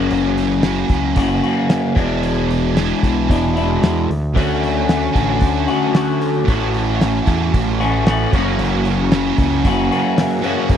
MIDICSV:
0, 0, Header, 1, 6, 480
1, 0, Start_track
1, 0, Tempo, 530035
1, 93, Time_signature, 4, 2, 24, 8
1, 9754, End_track
2, 0, Start_track
2, 0, Title_t, "String machine"
2, 0, Program_c, 0, 50
2, 3949, Note_on_c, 0, 73, 71
2, 3955, Note_on_c, 0, 85, 89
2, 3956, Note_on_c, 0, 81, 73
2, 3958, Note_on_c, 0, 66, 73
2, 5850, Note_off_c, 0, 73, 0
2, 5854, Note_off_c, 0, 81, 0
2, 5855, Note_off_c, 0, 66, 0
2, 5879, Note_on_c, 0, 66, 84
2, 5885, Note_on_c, 0, 76, 69
2, 5885, Note_on_c, 0, 81, 80
2, 7536, Note_off_c, 0, 81, 0
2, 7547, Note_on_c, 0, 82, 71
2, 9754, Note_off_c, 0, 66, 0
2, 9754, Note_off_c, 0, 76, 0
2, 9754, Note_off_c, 0, 82, 0
2, 9754, Note_off_c, 0, 85, 0
2, 9754, End_track
3, 0, Start_track
3, 0, Title_t, "Distorted electric guitar"
3, 0, Program_c, 1, 30
3, 0, Note_on_c, 1, 54, 89
3, 0, Note_on_c, 1, 58, 100
3, 0, Note_on_c, 1, 61, 99
3, 0, Note_on_c, 1, 66, 94
3, 556, Note_off_c, 1, 54, 0
3, 564, Note_off_c, 1, 58, 0
3, 566, Note_on_c, 1, 54, 71
3, 567, Note_off_c, 1, 61, 0
3, 569, Note_off_c, 1, 66, 0
3, 578, Note_on_c, 1, 58, 73
3, 589, Note_on_c, 1, 61, 81
3, 599, Note_on_c, 1, 66, 85
3, 1757, Note_off_c, 1, 54, 0
3, 1761, Note_on_c, 1, 52, 91
3, 1769, Note_off_c, 1, 58, 0
3, 1774, Note_off_c, 1, 61, 0
3, 1777, Note_on_c, 1, 56, 91
3, 1779, Note_off_c, 1, 66, 0
3, 1781, Note_on_c, 1, 59, 96
3, 1792, Note_on_c, 1, 64, 98
3, 2473, Note_off_c, 1, 52, 0
3, 2484, Note_on_c, 1, 52, 75
3, 2485, Note_off_c, 1, 56, 0
3, 2490, Note_off_c, 1, 59, 0
3, 2495, Note_off_c, 1, 64, 0
3, 2496, Note_on_c, 1, 56, 87
3, 2503, Note_on_c, 1, 59, 74
3, 2515, Note_on_c, 1, 64, 97
3, 3683, Note_off_c, 1, 52, 0
3, 3689, Note_off_c, 1, 56, 0
3, 3692, Note_off_c, 1, 59, 0
3, 3699, Note_off_c, 1, 64, 0
3, 3927, Note_on_c, 1, 50, 86
3, 3945, Note_on_c, 1, 57, 99
3, 3960, Note_on_c, 1, 66, 98
3, 4641, Note_off_c, 1, 66, 0
3, 4644, Note_off_c, 1, 50, 0
3, 4644, Note_on_c, 1, 66, 91
3, 4665, Note_off_c, 1, 57, 0
3, 4669, Note_on_c, 1, 57, 76
3, 4679, Note_on_c, 1, 50, 78
3, 5836, Note_on_c, 1, 45, 89
3, 5838, Note_off_c, 1, 50, 0
3, 5842, Note_on_c, 1, 52, 85
3, 5843, Note_off_c, 1, 57, 0
3, 5854, Note_on_c, 1, 57, 93
3, 5860, Note_on_c, 1, 61, 96
3, 5865, Note_off_c, 1, 66, 0
3, 5868, Note_on_c, 1, 64, 96
3, 6557, Note_off_c, 1, 45, 0
3, 6565, Note_off_c, 1, 64, 0
3, 6566, Note_off_c, 1, 57, 0
3, 6569, Note_on_c, 1, 64, 81
3, 6578, Note_off_c, 1, 61, 0
3, 6582, Note_on_c, 1, 61, 85
3, 6585, Note_on_c, 1, 57, 71
3, 6591, Note_off_c, 1, 52, 0
3, 6595, Note_on_c, 1, 52, 76
3, 6602, Note_on_c, 1, 45, 69
3, 7525, Note_off_c, 1, 52, 0
3, 7529, Note_on_c, 1, 54, 93
3, 7530, Note_off_c, 1, 57, 0
3, 7535, Note_on_c, 1, 58, 91
3, 7538, Note_off_c, 1, 45, 0
3, 7547, Note_off_c, 1, 61, 0
3, 7550, Note_on_c, 1, 61, 106
3, 7556, Note_off_c, 1, 64, 0
3, 7564, Note_on_c, 1, 66, 99
3, 8241, Note_off_c, 1, 54, 0
3, 8245, Note_on_c, 1, 54, 76
3, 8255, Note_off_c, 1, 58, 0
3, 8259, Note_on_c, 1, 58, 85
3, 8269, Note_off_c, 1, 61, 0
3, 8273, Note_on_c, 1, 61, 84
3, 8280, Note_off_c, 1, 66, 0
3, 8283, Note_on_c, 1, 66, 90
3, 9430, Note_off_c, 1, 54, 0
3, 9434, Note_on_c, 1, 54, 99
3, 9440, Note_off_c, 1, 61, 0
3, 9441, Note_off_c, 1, 58, 0
3, 9451, Note_on_c, 1, 61, 100
3, 9452, Note_on_c, 1, 58, 97
3, 9468, Note_off_c, 1, 66, 0
3, 9472, Note_on_c, 1, 66, 111
3, 9754, Note_off_c, 1, 54, 0
3, 9754, Note_off_c, 1, 58, 0
3, 9754, Note_off_c, 1, 61, 0
3, 9754, Note_off_c, 1, 66, 0
3, 9754, End_track
4, 0, Start_track
4, 0, Title_t, "Clean electric guitar"
4, 0, Program_c, 2, 27
4, 0, Note_on_c, 2, 42, 94
4, 0, Note_on_c, 2, 49, 105
4, 0, Note_on_c, 2, 52, 96
4, 0, Note_on_c, 2, 58, 96
4, 0, Note_on_c, 2, 61, 95
4, 0, Note_on_c, 2, 66, 102
4, 1038, Note_off_c, 2, 42, 0
4, 1045, Note_off_c, 2, 49, 0
4, 1049, Note_off_c, 2, 58, 0
4, 1049, Note_on_c, 2, 42, 78
4, 1053, Note_off_c, 2, 61, 0
4, 1054, Note_off_c, 2, 52, 0
4, 1054, Note_off_c, 2, 66, 0
4, 1055, Note_on_c, 2, 49, 78
4, 1057, Note_on_c, 2, 52, 80
4, 1060, Note_on_c, 2, 58, 84
4, 1064, Note_on_c, 2, 66, 89
4, 1068, Note_on_c, 2, 61, 76
4, 1280, Note_off_c, 2, 42, 0
4, 1284, Note_off_c, 2, 49, 0
4, 1285, Note_off_c, 2, 52, 0
4, 1286, Note_off_c, 2, 58, 0
4, 1286, Note_off_c, 2, 66, 0
4, 1290, Note_off_c, 2, 61, 0
4, 1297, Note_on_c, 2, 66, 97
4, 1300, Note_on_c, 2, 61, 84
4, 1304, Note_on_c, 2, 58, 89
4, 1307, Note_on_c, 2, 52, 69
4, 1310, Note_on_c, 2, 49, 73
4, 1318, Note_on_c, 2, 42, 73
4, 1766, Note_off_c, 2, 42, 0
4, 1766, Note_off_c, 2, 66, 0
4, 1767, Note_off_c, 2, 52, 0
4, 1767, Note_off_c, 2, 61, 0
4, 1769, Note_off_c, 2, 58, 0
4, 1769, Note_on_c, 2, 40, 94
4, 1770, Note_off_c, 2, 49, 0
4, 1774, Note_on_c, 2, 47, 102
4, 1778, Note_on_c, 2, 52, 102
4, 1784, Note_on_c, 2, 56, 109
4, 1785, Note_on_c, 2, 62, 103
4, 1795, Note_on_c, 2, 64, 101
4, 2965, Note_off_c, 2, 40, 0
4, 2968, Note_off_c, 2, 47, 0
4, 2970, Note_off_c, 2, 52, 0
4, 2973, Note_off_c, 2, 56, 0
4, 2975, Note_on_c, 2, 40, 71
4, 2978, Note_off_c, 2, 64, 0
4, 2985, Note_on_c, 2, 47, 76
4, 2985, Note_on_c, 2, 52, 73
4, 2989, Note_on_c, 2, 56, 83
4, 2990, Note_off_c, 2, 62, 0
4, 2994, Note_on_c, 2, 62, 77
4, 3001, Note_on_c, 2, 64, 80
4, 3207, Note_off_c, 2, 40, 0
4, 3212, Note_off_c, 2, 47, 0
4, 3212, Note_off_c, 2, 52, 0
4, 3213, Note_off_c, 2, 64, 0
4, 3214, Note_off_c, 2, 56, 0
4, 3216, Note_off_c, 2, 62, 0
4, 3224, Note_on_c, 2, 64, 90
4, 3229, Note_on_c, 2, 62, 79
4, 3236, Note_on_c, 2, 56, 92
4, 3239, Note_on_c, 2, 52, 76
4, 3243, Note_on_c, 2, 47, 76
4, 3245, Note_on_c, 2, 40, 75
4, 3692, Note_off_c, 2, 64, 0
4, 3695, Note_off_c, 2, 62, 0
4, 3698, Note_off_c, 2, 56, 0
4, 3700, Note_off_c, 2, 52, 0
4, 3701, Note_off_c, 2, 47, 0
4, 3702, Note_off_c, 2, 40, 0
4, 3938, Note_on_c, 2, 50, 90
4, 3943, Note_on_c, 2, 57, 84
4, 3948, Note_on_c, 2, 61, 103
4, 3957, Note_on_c, 2, 66, 90
4, 5130, Note_off_c, 2, 50, 0
4, 5132, Note_off_c, 2, 57, 0
4, 5137, Note_off_c, 2, 66, 0
4, 5141, Note_on_c, 2, 66, 80
4, 5147, Note_off_c, 2, 61, 0
4, 5150, Note_on_c, 2, 61, 81
4, 5157, Note_on_c, 2, 57, 80
4, 5166, Note_on_c, 2, 50, 71
4, 5376, Note_off_c, 2, 50, 0
4, 5379, Note_off_c, 2, 57, 0
4, 5387, Note_on_c, 2, 50, 86
4, 5394, Note_on_c, 2, 57, 84
4, 5398, Note_off_c, 2, 61, 0
4, 5402, Note_off_c, 2, 66, 0
4, 5402, Note_on_c, 2, 61, 83
4, 5405, Note_on_c, 2, 66, 80
4, 5853, Note_off_c, 2, 50, 0
4, 5857, Note_off_c, 2, 57, 0
4, 5864, Note_on_c, 2, 45, 95
4, 5870, Note_on_c, 2, 52, 98
4, 5875, Note_on_c, 2, 57, 92
4, 5881, Note_off_c, 2, 61, 0
4, 5884, Note_off_c, 2, 66, 0
4, 5885, Note_on_c, 2, 61, 99
4, 5888, Note_on_c, 2, 66, 101
4, 7050, Note_off_c, 2, 45, 0
4, 7056, Note_off_c, 2, 57, 0
4, 7060, Note_off_c, 2, 66, 0
4, 7063, Note_on_c, 2, 66, 88
4, 7066, Note_off_c, 2, 61, 0
4, 7069, Note_on_c, 2, 61, 81
4, 7072, Note_on_c, 2, 57, 76
4, 7075, Note_off_c, 2, 52, 0
4, 7078, Note_on_c, 2, 52, 87
4, 7085, Note_on_c, 2, 45, 70
4, 7283, Note_off_c, 2, 45, 0
4, 7294, Note_off_c, 2, 57, 0
4, 7294, Note_on_c, 2, 45, 80
4, 7296, Note_off_c, 2, 52, 0
4, 7300, Note_on_c, 2, 52, 83
4, 7306, Note_off_c, 2, 61, 0
4, 7308, Note_on_c, 2, 57, 82
4, 7310, Note_on_c, 2, 61, 89
4, 7311, Note_off_c, 2, 66, 0
4, 7315, Note_on_c, 2, 66, 94
4, 7525, Note_off_c, 2, 45, 0
4, 7532, Note_off_c, 2, 57, 0
4, 7536, Note_on_c, 2, 42, 106
4, 7540, Note_on_c, 2, 49, 100
4, 7544, Note_off_c, 2, 52, 0
4, 7548, Note_on_c, 2, 52, 97
4, 7548, Note_on_c, 2, 58, 86
4, 7553, Note_off_c, 2, 61, 0
4, 7555, Note_off_c, 2, 66, 0
4, 7557, Note_on_c, 2, 61, 99
4, 7559, Note_on_c, 2, 66, 110
4, 8724, Note_off_c, 2, 49, 0
4, 8727, Note_off_c, 2, 42, 0
4, 8731, Note_on_c, 2, 42, 80
4, 8735, Note_off_c, 2, 52, 0
4, 8738, Note_on_c, 2, 52, 79
4, 8740, Note_off_c, 2, 58, 0
4, 8742, Note_on_c, 2, 49, 76
4, 8744, Note_on_c, 2, 58, 81
4, 8745, Note_off_c, 2, 61, 0
4, 8748, Note_off_c, 2, 66, 0
4, 8749, Note_on_c, 2, 61, 94
4, 8752, Note_on_c, 2, 66, 86
4, 8960, Note_off_c, 2, 42, 0
4, 8964, Note_off_c, 2, 52, 0
4, 8966, Note_off_c, 2, 49, 0
4, 8966, Note_off_c, 2, 61, 0
4, 8967, Note_off_c, 2, 58, 0
4, 8971, Note_off_c, 2, 66, 0
4, 8975, Note_on_c, 2, 66, 88
4, 8977, Note_on_c, 2, 61, 80
4, 8979, Note_on_c, 2, 58, 80
4, 8983, Note_on_c, 2, 52, 77
4, 8989, Note_on_c, 2, 49, 78
4, 8993, Note_on_c, 2, 42, 73
4, 9433, Note_off_c, 2, 42, 0
4, 9442, Note_off_c, 2, 61, 0
4, 9443, Note_off_c, 2, 49, 0
4, 9443, Note_off_c, 2, 58, 0
4, 9444, Note_on_c, 2, 42, 98
4, 9445, Note_off_c, 2, 52, 0
4, 9454, Note_on_c, 2, 49, 96
4, 9457, Note_on_c, 2, 52, 101
4, 9461, Note_on_c, 2, 58, 104
4, 9465, Note_on_c, 2, 61, 111
4, 9466, Note_off_c, 2, 66, 0
4, 9470, Note_on_c, 2, 66, 99
4, 9754, Note_off_c, 2, 42, 0
4, 9754, Note_off_c, 2, 49, 0
4, 9754, Note_off_c, 2, 52, 0
4, 9754, Note_off_c, 2, 58, 0
4, 9754, Note_off_c, 2, 61, 0
4, 9754, Note_off_c, 2, 66, 0
4, 9754, End_track
5, 0, Start_track
5, 0, Title_t, "Picked electric bass"
5, 0, Program_c, 3, 34
5, 102, Note_on_c, 3, 30, 106
5, 749, Note_off_c, 3, 30, 0
5, 810, Note_on_c, 3, 37, 80
5, 1030, Note_off_c, 3, 37, 0
5, 1054, Note_on_c, 3, 30, 104
5, 1273, Note_off_c, 3, 30, 0
5, 1778, Note_on_c, 3, 28, 102
5, 2646, Note_off_c, 3, 28, 0
5, 2749, Note_on_c, 3, 35, 73
5, 2963, Note_off_c, 3, 35, 0
5, 2984, Note_on_c, 3, 28, 98
5, 3417, Note_off_c, 3, 28, 0
5, 3460, Note_on_c, 3, 40, 82
5, 3680, Note_off_c, 3, 40, 0
5, 3710, Note_on_c, 3, 38, 77
5, 3926, Note_off_c, 3, 38, 0
5, 3952, Note_on_c, 3, 38, 107
5, 4598, Note_off_c, 3, 38, 0
5, 4672, Note_on_c, 3, 33, 86
5, 4887, Note_off_c, 3, 33, 0
5, 4908, Note_on_c, 3, 38, 100
5, 5124, Note_off_c, 3, 38, 0
5, 5876, Note_on_c, 3, 33, 102
5, 6519, Note_off_c, 3, 33, 0
5, 6586, Note_on_c, 3, 40, 76
5, 6802, Note_off_c, 3, 40, 0
5, 6828, Note_on_c, 3, 33, 109
5, 7473, Note_off_c, 3, 33, 0
5, 7545, Note_on_c, 3, 30, 94
5, 7760, Note_off_c, 3, 30, 0
5, 7774, Note_on_c, 3, 30, 103
5, 8423, Note_off_c, 3, 30, 0
5, 8498, Note_on_c, 3, 37, 79
5, 8715, Note_off_c, 3, 37, 0
5, 8738, Note_on_c, 3, 30, 109
5, 8954, Note_off_c, 3, 30, 0
5, 9686, Note_on_c, 3, 30, 100
5, 9754, Note_off_c, 3, 30, 0
5, 9754, End_track
6, 0, Start_track
6, 0, Title_t, "Drums"
6, 95, Note_on_c, 9, 46, 70
6, 186, Note_off_c, 9, 46, 0
6, 339, Note_on_c, 9, 46, 62
6, 341, Note_on_c, 9, 38, 32
6, 430, Note_off_c, 9, 46, 0
6, 432, Note_off_c, 9, 38, 0
6, 569, Note_on_c, 9, 46, 79
6, 571, Note_on_c, 9, 38, 112
6, 660, Note_off_c, 9, 46, 0
6, 662, Note_off_c, 9, 38, 0
6, 808, Note_on_c, 9, 46, 57
6, 813, Note_on_c, 9, 36, 87
6, 899, Note_off_c, 9, 46, 0
6, 904, Note_off_c, 9, 36, 0
6, 1050, Note_on_c, 9, 46, 85
6, 1055, Note_on_c, 9, 36, 94
6, 1141, Note_off_c, 9, 46, 0
6, 1146, Note_off_c, 9, 36, 0
6, 1300, Note_on_c, 9, 46, 57
6, 1391, Note_off_c, 9, 46, 0
6, 1537, Note_on_c, 9, 46, 80
6, 1538, Note_on_c, 9, 38, 108
6, 1627, Note_off_c, 9, 46, 0
6, 1629, Note_off_c, 9, 38, 0
6, 1779, Note_on_c, 9, 36, 105
6, 1784, Note_on_c, 9, 46, 52
6, 1870, Note_off_c, 9, 36, 0
6, 1875, Note_off_c, 9, 46, 0
6, 2022, Note_on_c, 9, 46, 68
6, 2113, Note_off_c, 9, 46, 0
6, 2270, Note_on_c, 9, 46, 55
6, 2360, Note_off_c, 9, 46, 0
6, 2506, Note_on_c, 9, 46, 80
6, 2508, Note_on_c, 9, 38, 97
6, 2596, Note_off_c, 9, 46, 0
6, 2598, Note_off_c, 9, 38, 0
6, 2746, Note_on_c, 9, 36, 87
6, 2753, Note_on_c, 9, 46, 59
6, 2836, Note_off_c, 9, 36, 0
6, 2844, Note_off_c, 9, 46, 0
6, 2986, Note_on_c, 9, 36, 85
6, 2997, Note_on_c, 9, 46, 84
6, 3077, Note_off_c, 9, 36, 0
6, 3088, Note_off_c, 9, 46, 0
6, 3232, Note_on_c, 9, 46, 60
6, 3322, Note_off_c, 9, 46, 0
6, 3472, Note_on_c, 9, 46, 84
6, 3474, Note_on_c, 9, 38, 119
6, 3563, Note_off_c, 9, 46, 0
6, 3564, Note_off_c, 9, 38, 0
6, 3721, Note_on_c, 9, 46, 60
6, 3811, Note_off_c, 9, 46, 0
6, 3950, Note_on_c, 9, 36, 107
6, 3960, Note_on_c, 9, 46, 76
6, 4041, Note_off_c, 9, 36, 0
6, 4051, Note_off_c, 9, 46, 0
6, 4197, Note_on_c, 9, 46, 57
6, 4198, Note_on_c, 9, 38, 30
6, 4287, Note_off_c, 9, 46, 0
6, 4289, Note_off_c, 9, 38, 0
6, 4429, Note_on_c, 9, 46, 80
6, 4430, Note_on_c, 9, 38, 111
6, 4519, Note_off_c, 9, 46, 0
6, 4521, Note_off_c, 9, 38, 0
6, 4668, Note_on_c, 9, 36, 86
6, 4671, Note_on_c, 9, 46, 52
6, 4758, Note_off_c, 9, 36, 0
6, 4762, Note_off_c, 9, 46, 0
6, 4794, Note_on_c, 9, 38, 34
6, 4884, Note_off_c, 9, 38, 0
6, 4896, Note_on_c, 9, 46, 76
6, 4905, Note_on_c, 9, 36, 96
6, 4987, Note_off_c, 9, 46, 0
6, 4996, Note_off_c, 9, 36, 0
6, 5146, Note_on_c, 9, 46, 58
6, 5236, Note_off_c, 9, 46, 0
6, 5384, Note_on_c, 9, 46, 83
6, 5386, Note_on_c, 9, 38, 119
6, 5475, Note_off_c, 9, 46, 0
6, 5477, Note_off_c, 9, 38, 0
6, 5628, Note_on_c, 9, 46, 59
6, 5718, Note_off_c, 9, 46, 0
6, 5869, Note_on_c, 9, 36, 105
6, 5870, Note_on_c, 9, 46, 65
6, 5960, Note_off_c, 9, 36, 0
6, 5960, Note_off_c, 9, 46, 0
6, 6107, Note_on_c, 9, 46, 55
6, 6197, Note_off_c, 9, 46, 0
6, 6350, Note_on_c, 9, 46, 70
6, 6352, Note_on_c, 9, 38, 109
6, 6441, Note_off_c, 9, 46, 0
6, 6442, Note_off_c, 9, 38, 0
6, 6584, Note_on_c, 9, 46, 54
6, 6587, Note_on_c, 9, 36, 81
6, 6675, Note_off_c, 9, 46, 0
6, 6677, Note_off_c, 9, 36, 0
6, 6828, Note_on_c, 9, 36, 93
6, 6831, Note_on_c, 9, 46, 82
6, 6919, Note_off_c, 9, 36, 0
6, 6922, Note_off_c, 9, 46, 0
6, 7073, Note_on_c, 9, 46, 55
6, 7163, Note_off_c, 9, 46, 0
6, 7304, Note_on_c, 9, 46, 81
6, 7306, Note_on_c, 9, 38, 127
6, 7395, Note_off_c, 9, 46, 0
6, 7397, Note_off_c, 9, 38, 0
6, 7543, Note_on_c, 9, 36, 107
6, 7547, Note_on_c, 9, 46, 54
6, 7634, Note_off_c, 9, 36, 0
6, 7638, Note_off_c, 9, 46, 0
6, 7780, Note_on_c, 9, 46, 76
6, 7870, Note_off_c, 9, 46, 0
6, 8016, Note_on_c, 9, 46, 61
6, 8107, Note_off_c, 9, 46, 0
6, 8256, Note_on_c, 9, 46, 75
6, 8258, Note_on_c, 9, 38, 121
6, 8347, Note_off_c, 9, 46, 0
6, 8349, Note_off_c, 9, 38, 0
6, 8493, Note_on_c, 9, 46, 59
6, 8497, Note_on_c, 9, 36, 92
6, 8584, Note_off_c, 9, 46, 0
6, 8588, Note_off_c, 9, 36, 0
6, 8625, Note_on_c, 9, 38, 31
6, 8715, Note_off_c, 9, 38, 0
6, 8737, Note_on_c, 9, 36, 92
6, 8738, Note_on_c, 9, 46, 84
6, 8828, Note_off_c, 9, 36, 0
6, 8828, Note_off_c, 9, 46, 0
6, 8985, Note_on_c, 9, 46, 62
6, 9075, Note_off_c, 9, 46, 0
6, 9217, Note_on_c, 9, 46, 88
6, 9219, Note_on_c, 9, 38, 118
6, 9307, Note_off_c, 9, 46, 0
6, 9309, Note_off_c, 9, 38, 0
6, 9453, Note_on_c, 9, 46, 59
6, 9543, Note_off_c, 9, 46, 0
6, 9685, Note_on_c, 9, 46, 68
6, 9688, Note_on_c, 9, 36, 99
6, 9754, Note_off_c, 9, 36, 0
6, 9754, Note_off_c, 9, 46, 0
6, 9754, End_track
0, 0, End_of_file